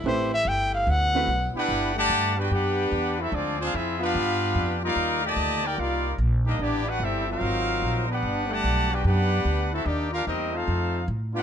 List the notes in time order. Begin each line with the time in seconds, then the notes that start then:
Already playing: E4
0.04 A1 C3 G3 A3 C4 E4 G4 B4 C5
0.34 E5
0.45 G1 G5
0.74 F5
0.87 D2 F#3 B3 F#5
1.14 A3 C4 E4 F#4 B4
1.27 B1
1.55 B3 D4 E4 G4 B4 F#5, muted upright bass stroke
1.69 G1
1.95 D3 G3 A3 G4 D5 F#5 A5
2.10 G2
2.36 B3 D4 F#4 G4 B4 G5
2.49 F#2 B3 D4 G4 B4 F#5
2.92 E2
3.20 C4 E4 F#4 A4 E5
3.32 D2 F3 G#3 C4 D4 F4 G#4 D5
3.60 G#3 C4 D4 F4 G#4 C5 F5
3.74 F2 C4 E4 F4 G#4 E5
3.99 B3 D4 F4 G4 B4 F5
4.15 G2
4.55 F2
4.83 G3 A#3 D#4 F4 A#4 D5 F5
4.96 D#2
5.22 A#2 D#3 A3 G4 D5 D#5
5.26 A5
5.36 D2
5.64 A#3 D#4 G4 A#4 D5 G5
5.77 C2 G3 A#3 D#4 F4 A#4 D5 F5
6.18 A#1
6.46 G3 A#3 D4 D#4 G4 D#5
6.59 A1 B3 D4 E4 G4 D5
6.88 D4 F#4 G4 B4 F#5
7.00 G1 G3 C4 E4 G4 A4 E5
7.28 F#3 C4 D#4 F4 A#4 C5 F5
7.41 G#1
7.82 A#1
8.07 B3 D4 G4 B4 F#5
8.22 G1
8.49 D3 G3 A3 G4 D5 F#5 A5
8.64 B1
8.90 B3 D4 F#4 G4 B4 G5
9.04 F#2 B3 D4 G4 B4 F#5
9.45 D2
9.73 C4 E4 F#4 A4 E5
9.85 D#2 A#3 D4 D#4 G4 D5
10.11 D4 F4 G4 A#4 F5
10.26 E2 G3 A#3 C4 D#4 G4 A#4 D#5
10.52 A3 C4 D#4 F4 A4 C5 F5
10.68 F2
11.08 A2
11.33 B3 D4 F4 G4 B4 F#5